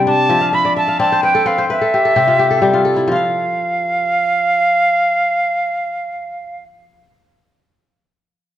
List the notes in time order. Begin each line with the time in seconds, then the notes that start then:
Already playing: C3 G3 C4
0.07 D4 A5
0.29 F3 E5
0.41 F5
0.53 E5 B5
0.65 D5
0.77 E5 A5
0.88 F5
0.99 C4 D5 A5
1.12 C5
1.23 B4 G5
1.35 A4
1.46 C4 B4 F5
1.58 C5
1.70 B4 E5
1.81 A4
1.94 G4
2.05 A4
2.16 C3 G4
2.28 F4
2.39 G4
2.51 A4
2.62 G3 G4
2.73 F4
2.85 A4
2.96 E4
3.08 F3 F5
3.12 F4 F5